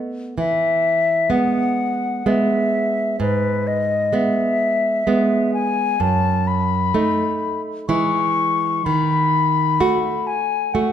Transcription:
Already playing: nylon-string guitar A3 B3
0.38 nylon-string guitar E3, flute E5
1.30 nylon-string guitar G#3 B3, flute F#5
2.26 nylon-string guitar G#3 B3, flute E5
3.20 nylon-string guitar G#2, flute B4
3.67 flute D#5
4.13 nylon-string guitar G#3 B3, flute E5
5.07 nylon-string guitar G#3 B3
5.54 flute G#5
6.00 nylon-string guitar F#2, flute A5
6.47 flute B5
6.94 nylon-string guitar A3 D#4
7.88 nylon-string guitar E3 G#3 E4, flute C#6
8.85 nylon-string guitar D#3, flute B5
9.80 nylon-string guitar A3 F#4
10.27 flute G#5
10.74 nylon-string guitar A3 F#4, flute F#5

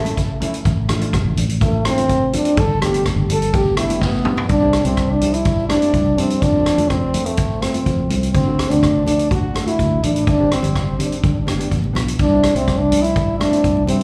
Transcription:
Already playing: fingered electric bass A1, french horn A3
0.05 steel pan A3 C#4 E4, closed hi-hat, high conga
0.17 kick, closed hi-hat
0.40 steel pan A3 C#4 E4, closed hi-hat, low conga
0.54 closed hi-hat
0.65 fingered electric bass A1, kick, closed hi-hat
0.88 steel pan A3 D4 F4, cross-stick, closed hi-hat, high conga, low conga
0.99 steel pan A3 D4 F4, closed hi-hat
1.13 kick, cross-stick, closed hi-hat, high conga
1.25 fingered electric bass A1
1.37 fingered electric bass A1, closed hi-hat, low conga
1.49 closed hi-hat
1.61 steel pan A3 D4 F4, french horn A3, kick, closed hi-hat
1.84 steel pan A3 D4 F4, french horn C4, cross-stick, closed hi-hat
1.97 steel pan A3 D4 F4, closed hi-hat, high conga
2.09 kick, closed hi-hat
2.32 steel pan A3 D4 F4, closed hi-hat, low conga
2.36 french horn D4
2.45 closed hi-hat
2.57 fingered electric bass G1, french horn A4, kick, closed hi-hat
2.81 steel pan B3 D4 G4, french horn G4, cross-stick, closed hi-hat, high conga, low conga
2.93 steel pan B3 D4 G4, closed hi-hat
3.06 kick, cross-stick, closed hi-hat, high conga
3.16 fingered electric bass G1
3.29 fingered electric bass G1, french horn A4, closed hi-hat, low conga
3.42 closed hi-hat
3.53 steel pan B3 D4 G4, french horn G4, kick, closed hi-hat, high conga
3.65 high conga
3.77 steel pan B3 D4 G4, french horn E4, cross-stick, closed hi-hat
3.89 steel pan B3 D4 E4, closed hi-hat, high conga
4.01 french horn B3, kick, snare, high conga
4.14 high conga
4.24 steel pan B3 D4 G4, mid tom, low conga
4.37 floor tom, low conga
4.48 fingered electric bass C2, french horn D4, kick, closed hi-hat
4.61 steel pan C4 E4 G4
4.73 cross-stick, closed hi-hat
4.84 fingered electric bass C2, french horn C4, steel pan C4 E4 G4, closed hi-hat, high conga
4.97 kick, cross-stick, closed hi-hat
5.10 french horn D4
5.21 steel pan C4 E4 G4, closed hi-hat, low conga
5.33 french horn E4, closed hi-hat
5.45 kick, closed hi-hat
5.69 steel pan C4 E4 G4, french horn D4, cross-stick, closed hi-hat, high conga
5.82 steel pan C4 E4 G4, closed hi-hat, high conga
5.93 fingered electric bass C2, kick, closed hi-hat
6.06 high conga
6.16 fingered electric bass G2, steel pan C4 E4 G4, french horn C4, closed hi-hat, low conga
6.30 closed hi-hat
6.41 fingered electric bass F2, french horn D4, kick, closed hi-hat
6.54 steel pan A3 C4 F4
6.66 cross-stick, closed hi-hat
6.78 fingered electric bass F2, steel pan A3 C4 F4, closed hi-hat, high conga
6.89 french horn C4, kick, cross-stick, closed hi-hat
7.14 steel pan A3 C4 F4, closed hi-hat, high conga, low conga
7.26 french horn A3, closed hi-hat
7.37 kick, closed hi-hat
7.62 steel pan A3 C4 F4, french horn C4, cross-stick, closed hi-hat, high conga
7.73 steel pan A3 C4 F4, closed hi-hat, high conga
7.86 fingered electric bass F2, kick, closed hi-hat
8.00 high conga
8.09 fingered electric bass C2, steel pan A3 C4 F4, closed hi-hat, low conga
8.23 closed hi-hat
8.33 fingered electric bass D2, french horn C4, kick, closed hi-hat
8.46 steel pan A3 D4 F#4
8.59 cross-stick, closed hi-hat
8.69 fingered electric bass D2, steel pan A3 D4 F#4, french horn D4, closed hi-hat, high conga
8.83 kick, cross-stick, closed hi-hat
9.05 steel pan A3 D4 F#4, french horn D4, closed hi-hat, high conga, low conga
9.19 closed hi-hat
9.31 french horn F#4, kick, closed hi-hat
9.54 steel pan A3 D4 A4, cross-stick, closed hi-hat, high conga
9.66 steel pan A3 D4 F#4, french horn E4, closed hi-hat, high conga
9.79 fingered electric bass D2, kick, closed hi-hat
9.91 high conga
10.02 fingered electric bass A1, steel pan A3 D4 E4, french horn D4, closed hi-hat, low conga
10.16 closed hi-hat
10.27 fingered electric bass G1, french horn D4, kick, closed hi-hat
10.38 steel pan C4 D4 G4
10.52 french horn C4, cross-stick, closed hi-hat
10.61 fingered electric bass G1, steel pan C4 D4 G4, closed hi-hat, high conga, low conga
10.75 kick, cross-stick, closed hi-hat
10.98 steel pan C4 D4 G4, closed hi-hat, low conga
11.02 french horn D4
11.09 french horn D4, closed hi-hat
11.17 french horn D4
11.23 fingered electric bass G1, french horn D4, kick, closed hi-hat
11.32 french horn D4
11.39 french horn D4
11.46 steel pan B3 D4 G4, french horn D4, cross-stick, closed hi-hat, high conga
11.55 steel pan B3 D4, french horn D4
11.59 french horn D4, steel pan G4, closed hi-hat, high conga
11.71 fingered electric bass A1, kick, closed hi-hat
11.84 high conga
11.93 fingered electric bass B1, steel pan B3 D4 F4, cross-stick, closed hi-hat, low conga
12.08 closed hi-hat
12.19 fingered electric bass C2, french horn D4, kick, closed hi-hat
12.31 steel pan G3 C4 E4
12.43 cross-stick, closed hi-hat
12.55 fingered electric bass C2, steel pan G3 C4 E4, french horn C4, closed hi-hat, high conga
12.68 kick, cross-stick, closed hi-hat
12.77 french horn D4
12.89 steel pan G3 C4 D4, closed hi-hat, high conga, low conga
13.02 french horn E4, closed hi-hat
13.16 kick, closed hi-hat
13.38 steel pan G3 C4 E4, french horn D4, cross-stick, closed hi-hat, high conga
13.51 steel pan G3 C4 E4, closed hi-hat, high conga
13.64 fingered electric bass C2, kick, closed hi-hat
13.77 high conga
13.86 fingered electric bass G2, steel pan G3 C4 E4, french horn C4, closed hi-hat, low conga

